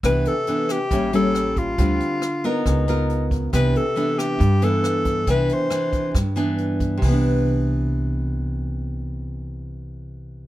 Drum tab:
HH |xxxxxxxx|xxxxxxxx|xxxxxxxx|xxxxxxxx|
SD |r--r--r-|--r-r---|r--r--r-|--r-r---|
BD |o---o--o|o---o--o|o---o--o|o--oo--o|

HH |o-------|--------|
SD |--------|--------|
BD |o-------|--------|